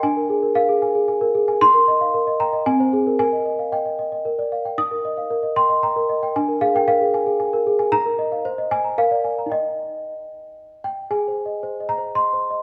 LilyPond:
\new Staff \with { instrumentName = "Celesta" } { \time 3/4 \key ees \major \tempo 4 = 114 << { aes''4 f''4. r8 | c'''4. bes''8 aes''4 | aes''4 g''4. r8 | ees'''4. c'''8 bes''4 |
aes''8 f''16 g''16 f''4. r8 | bes''4. aes''8 f''4 | ees''2~ ees''8 g''8 | aes''4. bes''8 c'''4 | } \\ { d'16 bes'16 aes'16 bes'16 bes'16 aes'16 aes''16 aes'16 aes''16 bes'16 aes'16 aes''16 | ees'16 bes'16 ees''16 f''16 bes'16 ees''16 g''16 ees''16 c'16 c''16 aes'16 bes'16 | bes'16 ees''16 ees''16 f''16 ees''16 ees''16 ees''16 ees''16 bes'16 d''16 f''16 g''16 | ees'16 bes'16 ees''16 f''16 bes'16 ees''16 g''16 ees''16 g''16 bes'16 ees''16 g''16 |
d'16 bes'16 aes'16 bes'16 bes'16 aes'16 aes''16 aes'16 aes''16 bes'16 aes'16 aes''16 | ees'16 bes'16 ees''16 f''16 c''16 ees''8 bes''16 bes'16 d''16 aes''16 bes''16 | <ees' g''>2. | \tuplet 3/2 { aes'8 c''8 ees''8 c''8 ees''8 c''8 ees''8 c''8 ees''8 } | } >> }